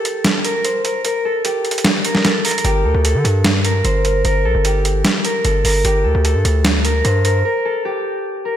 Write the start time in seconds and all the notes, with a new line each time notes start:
Already playing: G4 A4
0.05 closed hi-hat
0.24 snare, closed hi-hat
0.44 A#4, closed hi-hat
0.64 C5, closed hi-hat
0.84 A#4, closed hi-hat
1.05 A#4, closed hi-hat
1.25 A4
1.45 G4, closed hi-hat
1.65 closed hi-hat
1.71 closed hi-hat
1.78 closed hi-hat
1.84 snare, closed hi-hat
2.05 A#4, closed hi-hat
2.15 snare
2.25 A4, snare, closed hi-hat
2.44 A#4, closed hi-hat, open hi-hat
2.51 closed hi-hat
2.58 closed hi-hat
2.64 G1 G4, closed hi-hat
2.84 D2 A4
2.94 D2
3.05 A4, closed hi-hat
3.15 D3
3.25 G2, closed hi-hat
3.44 snare, closed hi-hat
3.65 A#4, closed hi-hat
3.84 G1 C5, closed hi-hat
4.05 A#4, closed hi-hat
4.25 G1 A#4, closed hi-hat
4.45 A#1 A4
4.55 G1
4.65 G4, closed hi-hat
4.85 closed hi-hat
5.05 snare, closed hi-hat
5.25 A#4, closed hi-hat
5.45 G1 A4, closed hi-hat
5.65 G1 A#4, open hi-hat
5.85 G1 G4, closed hi-hat
6.04 D2 A4
6.15 D2
6.25 A4, closed hi-hat
6.35 G2
6.45 D2, closed hi-hat
6.65 snare, closed hi-hat
6.85 A#4, closed hi-hat
7.04 G2 C5, closed hi-hat
7.24 A#4, closed hi-hat
7.45 A#4
7.65 A4
7.85 G4
8.45 A#4